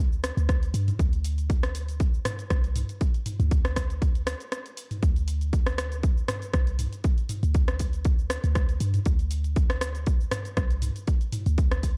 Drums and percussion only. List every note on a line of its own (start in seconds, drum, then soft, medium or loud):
0.13 cabasa soft
0.24 cross-stick medium
0.24 open hi-hat medium
0.24 cabasa medium
0.37 closed hi-hat soft
0.37 cabasa soft
0.49 kick loud
0.49 cross-stick medium
0.49 closed hi-hat medium
0.49 cabasa soft
0.63 closed hi-hat soft
0.63 cabasa soft
0.74 open hi-hat medium
0.74 cabasa medium
0.88 closed hi-hat soft
0.88 mid tom medium
0.88 cabasa soft
0.99 kick loud
0.99 closed hi-hat medium
0.99 cabasa medium
1.13 closed hi-hat soft
1.13 cabasa soft
1.24 open hi-hat medium
1.24 cabasa medium
1.38 closed hi-hat soft
1.38 cabasa soft
1.50 kick loud
1.50 closed hi-hat medium
1.50 cabasa medium
1.63 cross-stick medium
1.63 open hi-hat medium
1.63 cabasa soft
1.75 open hi-hat loud
1.75 cabasa medium
1.88 closed hi-hat soft
1.88 cabasa soft
2.00 kick loud
2.00 closed hi-hat medium
2.00 cabasa soft
2.14 cabasa soft
2.25 cross-stick medium
2.25 mid tom medium
2.25 open hi-hat loud
2.25 cabasa medium
2.39 closed hi-hat soft
2.39 cabasa soft
2.50 kick loud
2.50 cross-stick medium
2.50 closed hi-hat medium
2.50 cabasa soft
2.64 closed hi-hat soft
2.64 cabasa soft
2.76 mid tom medium
2.76 open hi-hat medium
2.76 cabasa medium
2.89 closed hi-hat soft
2.89 cabasa soft
3.01 kick loud
3.01 closed hi-hat medium
3.01 cabasa medium
3.14 closed hi-hat soft
3.14 cabasa soft
3.26 mid tom medium
3.26 open hi-hat medium
3.26 cabasa medium
3.40 closed hi-hat soft
3.40 mid tom medium
3.40 cabasa soft
3.51 kick loud
3.51 closed hi-hat medium
3.51 cabasa medium
3.65 cross-stick medium
3.65 open hi-hat medium
3.65 cabasa soft
3.76 kick medium
3.76 cross-stick loud
3.76 open hi-hat loud
3.76 cabasa medium
3.90 closed hi-hat soft
3.90 cabasa soft
4.02 kick loud
4.02 closed hi-hat medium
4.02 cabasa medium
4.15 closed hi-hat soft
4.15 cabasa soft
4.27 cross-stick loud
4.27 open hi-hat medium
4.27 cabasa medium
4.40 closed hi-hat soft
4.40 cabasa soft
4.52 cross-stick medium
4.52 closed hi-hat medium
4.52 cabasa medium
4.66 closed hi-hat soft
4.66 cabasa soft
4.77 open hi-hat medium
4.77 cabasa medium
4.91 mid tom medium
4.91 open hi-hat medium
4.91 cabasa soft
5.03 kick loud
5.03 closed hi-hat medium
5.03 cabasa medium
5.16 closed hi-hat soft
5.16 cabasa soft
5.28 open hi-hat medium
5.28 cabasa medium
5.41 closed hi-hat soft
5.41 cabasa soft
5.53 kick loud
5.53 closed hi-hat medium
5.53 cabasa medium
5.67 cross-stick medium
5.67 open hi-hat medium
5.67 cabasa soft
5.78 cross-stick loud
5.78 open hi-hat loud
5.78 cabasa medium
5.92 closed hi-hat soft
5.92 cabasa soft
6.03 kick loud
6.03 closed hi-hat medium
6.03 cabasa medium
6.17 cabasa soft
6.28 cross-stick loud
6.28 mid tom medium
6.28 open hi-hat loud
6.28 cabasa medium
6.42 closed hi-hat soft
6.42 cabasa soft
6.53 kick loud
6.53 cross-stick medium
6.53 closed hi-hat medium
6.53 cabasa medium
6.67 closed hi-hat soft
6.67 cabasa soft
6.79 mid tom medium
6.79 open hi-hat medium
6.79 cabasa medium
6.93 closed hi-hat soft
6.93 cabasa soft
7.04 kick loud
7.04 closed hi-hat medium
7.04 cabasa medium
7.18 closed hi-hat soft
7.18 cabasa soft
7.29 mid tom medium
7.29 open hi-hat medium
7.29 cabasa loud
7.43 closed hi-hat soft
7.43 cabasa soft
7.54 kick loud
7.54 closed hi-hat medium
7.54 cabasa medium
7.68 cross-stick medium
7.68 closed hi-hat soft
7.68 cabasa soft
7.79 kick medium
7.79 open hi-hat medium
7.79 cabasa loud
7.93 closed hi-hat soft
7.93 cabasa soft
8.05 kick loud
8.05 closed hi-hat medium
8.05 cabasa medium
8.19 cabasa soft
8.30 cross-stick loud
8.30 open hi-hat medium
8.30 cabasa loud
8.44 closed hi-hat soft
8.44 cabasa soft
8.55 kick loud
8.55 cross-stick medium
8.55 closed hi-hat medium
8.55 cabasa medium
8.69 closed hi-hat soft
8.69 cabasa soft
8.80 open hi-hat medium
8.80 cabasa medium
8.94 closed hi-hat soft
8.94 mid tom medium
8.94 cabasa soft
9.05 kick loud
9.05 closed hi-hat medium
9.05 cabasa medium
9.19 closed hi-hat soft
9.19 cabasa soft
9.31 open hi-hat medium
9.31 cabasa loud
9.44 closed hi-hat soft
9.44 cabasa soft
9.56 kick loud
9.56 closed hi-hat medium
9.56 cabasa medium
9.70 cross-stick medium
9.70 open hi-hat medium
9.70 cabasa soft
9.81 cross-stick loud
9.81 open hi-hat medium
9.81 cabasa loud
9.95 closed hi-hat soft
9.95 cabasa soft
10.06 kick loud
10.06 closed hi-hat medium
10.06 cabasa medium
10.21 cabasa soft
10.31 cross-stick loud
10.31 mid tom medium
10.31 open hi-hat medium
10.31 cabasa loud
10.45 closed hi-hat soft
10.45 cabasa soft
10.57 kick loud
10.57 cross-stick medium
10.57 closed hi-hat medium
10.57 cabasa medium
10.71 closed hi-hat soft
10.71 cabasa soft
10.82 mid tom medium
10.82 open hi-hat medium
10.82 cabasa loud
10.96 closed hi-hat soft
10.96 cabasa soft
11.07 kick loud
11.07 closed hi-hat medium
11.07 cabasa medium
11.21 closed hi-hat soft
11.21 cabasa soft
11.32 mid tom medium
11.32 open hi-hat medium
11.32 cabasa loud
11.46 closed hi-hat soft
11.46 cabasa soft
11.58 kick loud
11.58 closed hi-hat medium
11.58 cabasa medium
11.71 cross-stick medium
11.71 closed hi-hat soft
11.71 cabasa soft
11.83 kick medium
11.83 open hi-hat medium
11.83 cabasa loud